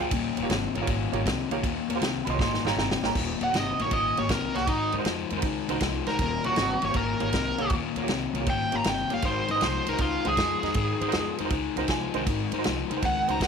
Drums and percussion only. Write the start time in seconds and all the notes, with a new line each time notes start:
0.11 kick, ride
0.37 ride
0.50 snare, ride
0.75 ride
0.87 kick, ride
1.13 ride
1.26 kick, snare, ride
1.51 ride
1.63 kick, ride
1.90 ride
2.02 snare, ride
2.27 ride
2.39 kick, snare
2.54 snare
2.67 snare
2.79 snare
2.91 snare
3.04 snare
3.15 kick, crash
3.41 ride
3.54 snare, ride
3.79 ride
3.91 kick, ride
4.17 ride
4.29 kick, snare, ride
4.55 snare, ride
4.67 kick, ride
4.92 ride
5.05 snare, ride
5.30 ride
5.42 kick, ride
5.69 ride
5.80 kick, snare, ride
6.06 snare, ride
6.19 kick, ride
6.44 ride
6.56 snare, ride
6.82 ride
6.94 kick, ride
7.20 ride
7.33 kick, snare, ride
7.58 ride
7.70 kick, ride
7.96 ride
8.08 snare, ride
8.35 ride
8.46 kick, ride
8.72 ride
8.84 snare, ride
9.10 ride
9.22 kick, ride
9.48 ride
9.61 snare, ride
9.87 ride
9.98 kick, ride
10.25 ride
10.37 kick, snare, ride
10.63 snare, ride
10.74 kick, ride
11.01 ride
11.12 snare, ride
11.38 ride
11.50 kick, ride
11.77 ride
11.88 kick, snare, ride
12.14 ride
12.27 kick, ride
12.52 ride
12.64 snare, ride
12.91 ride
13.02 kick, ride
13.28 ride
13.41 kick, snare, ride